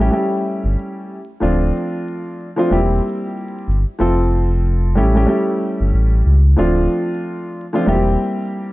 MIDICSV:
0, 0, Header, 1, 3, 480
1, 0, Start_track
1, 0, Key_signature, -1, "minor"
1, 0, Tempo, 645161
1, 1056, Time_signature, 4, 2, 24, 8
1, 6492, End_track
2, 0, Start_track
2, 0, Title_t, "Grand piano"
2, 0, Program_c, 0, 0
2, 0, Note_on_c, 0, 61, 86
2, 5, Note_on_c, 0, 64, 81
2, 9, Note_on_c, 0, 67, 103
2, 78, Note_off_c, 0, 61, 0
2, 81, Note_on_c, 0, 55, 92
2, 83, Note_off_c, 0, 64, 0
2, 85, Note_on_c, 0, 57, 78
2, 87, Note_off_c, 0, 67, 0
2, 90, Note_on_c, 0, 61, 76
2, 94, Note_on_c, 0, 64, 82
2, 98, Note_on_c, 0, 67, 100
2, 871, Note_off_c, 0, 55, 0
2, 873, Note_off_c, 0, 57, 0
2, 875, Note_off_c, 0, 61, 0
2, 877, Note_off_c, 0, 64, 0
2, 880, Note_off_c, 0, 67, 0
2, 1043, Note_on_c, 0, 53, 88
2, 1047, Note_on_c, 0, 57, 81
2, 1051, Note_on_c, 0, 60, 84
2, 1056, Note_on_c, 0, 62, 88
2, 1060, Note_on_c, 0, 65, 105
2, 1832, Note_off_c, 0, 53, 0
2, 1834, Note_off_c, 0, 57, 0
2, 1836, Note_off_c, 0, 60, 0
2, 1839, Note_off_c, 0, 62, 0
2, 1840, Note_off_c, 0, 65, 0
2, 1907, Note_on_c, 0, 53, 96
2, 1912, Note_on_c, 0, 57, 78
2, 1916, Note_on_c, 0, 60, 92
2, 1921, Note_on_c, 0, 62, 81
2, 1925, Note_on_c, 0, 65, 107
2, 2006, Note_off_c, 0, 60, 0
2, 2009, Note_on_c, 0, 55, 89
2, 2013, Note_on_c, 0, 58, 75
2, 2018, Note_on_c, 0, 60, 89
2, 2022, Note_on_c, 0, 64, 87
2, 2027, Note_on_c, 0, 67, 108
2, 2045, Note_off_c, 0, 53, 0
2, 2047, Note_off_c, 0, 57, 0
2, 2052, Note_off_c, 0, 62, 0
2, 2054, Note_off_c, 0, 65, 0
2, 2795, Note_off_c, 0, 55, 0
2, 2797, Note_off_c, 0, 58, 0
2, 2799, Note_off_c, 0, 60, 0
2, 2801, Note_off_c, 0, 64, 0
2, 2804, Note_off_c, 0, 67, 0
2, 2967, Note_on_c, 0, 53, 94
2, 2970, Note_on_c, 0, 57, 82
2, 2976, Note_on_c, 0, 60, 91
2, 2980, Note_on_c, 0, 65, 93
2, 2984, Note_on_c, 0, 69, 109
2, 3678, Note_off_c, 0, 57, 0
2, 3685, Note_on_c, 0, 55, 91
2, 3689, Note_on_c, 0, 57, 91
2, 3691, Note_off_c, 0, 53, 0
2, 3694, Note_on_c, 0, 61, 86
2, 3696, Note_off_c, 0, 60, 0
2, 3698, Note_off_c, 0, 65, 0
2, 3698, Note_on_c, 0, 64, 83
2, 3700, Note_off_c, 0, 69, 0
2, 3703, Note_on_c, 0, 67, 101
2, 3817, Note_off_c, 0, 55, 0
2, 3823, Note_off_c, 0, 57, 0
2, 3826, Note_off_c, 0, 61, 0
2, 3829, Note_on_c, 0, 55, 90
2, 3830, Note_off_c, 0, 64, 0
2, 3834, Note_on_c, 0, 57, 84
2, 3835, Note_off_c, 0, 67, 0
2, 3837, Note_on_c, 0, 61, 88
2, 3842, Note_on_c, 0, 64, 79
2, 3846, Note_on_c, 0, 67, 109
2, 3907, Note_off_c, 0, 55, 0
2, 3911, Note_off_c, 0, 57, 0
2, 3915, Note_off_c, 0, 61, 0
2, 3918, Note_on_c, 0, 55, 94
2, 3921, Note_off_c, 0, 64, 0
2, 3922, Note_on_c, 0, 57, 86
2, 3924, Note_off_c, 0, 67, 0
2, 3926, Note_on_c, 0, 61, 78
2, 3932, Note_on_c, 0, 64, 86
2, 3935, Note_on_c, 0, 67, 100
2, 4709, Note_off_c, 0, 55, 0
2, 4711, Note_off_c, 0, 57, 0
2, 4713, Note_off_c, 0, 61, 0
2, 4716, Note_off_c, 0, 64, 0
2, 4718, Note_off_c, 0, 67, 0
2, 4883, Note_on_c, 0, 53, 91
2, 4887, Note_on_c, 0, 57, 86
2, 4891, Note_on_c, 0, 60, 83
2, 4895, Note_on_c, 0, 62, 86
2, 4899, Note_on_c, 0, 65, 110
2, 5672, Note_off_c, 0, 53, 0
2, 5674, Note_off_c, 0, 57, 0
2, 5676, Note_off_c, 0, 60, 0
2, 5678, Note_off_c, 0, 62, 0
2, 5680, Note_off_c, 0, 65, 0
2, 5751, Note_on_c, 0, 53, 97
2, 5755, Note_on_c, 0, 57, 81
2, 5759, Note_on_c, 0, 60, 91
2, 5763, Note_on_c, 0, 62, 85
2, 5768, Note_on_c, 0, 65, 109
2, 5847, Note_off_c, 0, 60, 0
2, 5849, Note_on_c, 0, 55, 96
2, 5853, Note_on_c, 0, 58, 80
2, 5858, Note_on_c, 0, 60, 88
2, 5862, Note_on_c, 0, 64, 89
2, 5866, Note_on_c, 0, 67, 111
2, 5887, Note_off_c, 0, 53, 0
2, 5889, Note_off_c, 0, 57, 0
2, 5893, Note_off_c, 0, 62, 0
2, 5895, Note_off_c, 0, 65, 0
2, 6492, Note_off_c, 0, 55, 0
2, 6492, Note_off_c, 0, 58, 0
2, 6492, Note_off_c, 0, 60, 0
2, 6492, Note_off_c, 0, 64, 0
2, 6492, Note_off_c, 0, 67, 0
2, 6492, End_track
3, 0, Start_track
3, 0, Title_t, "Sub bass"
3, 0, Program_c, 1, 38
3, 0, Note_on_c, 1, 33, 101
3, 76, Note_off_c, 1, 33, 0
3, 476, Note_on_c, 1, 31, 89
3, 567, Note_off_c, 1, 31, 0
3, 1056, Note_on_c, 1, 26, 111
3, 1276, Note_off_c, 1, 26, 0
3, 2015, Note_on_c, 1, 28, 115
3, 2236, Note_off_c, 1, 28, 0
3, 2736, Note_on_c, 1, 31, 93
3, 2866, Note_off_c, 1, 31, 0
3, 2977, Note_on_c, 1, 29, 123
3, 3696, Note_on_c, 1, 33, 104
3, 3708, Note_off_c, 1, 29, 0
3, 3916, Note_off_c, 1, 33, 0
3, 4317, Note_on_c, 1, 31, 90
3, 4408, Note_off_c, 1, 31, 0
3, 4415, Note_on_c, 1, 33, 97
3, 4636, Note_off_c, 1, 33, 0
3, 4656, Note_on_c, 1, 37, 95
3, 4876, Note_off_c, 1, 37, 0
3, 4896, Note_on_c, 1, 26, 114
3, 5116, Note_off_c, 1, 26, 0
3, 5855, Note_on_c, 1, 28, 115
3, 6076, Note_off_c, 1, 28, 0
3, 6492, End_track
0, 0, End_of_file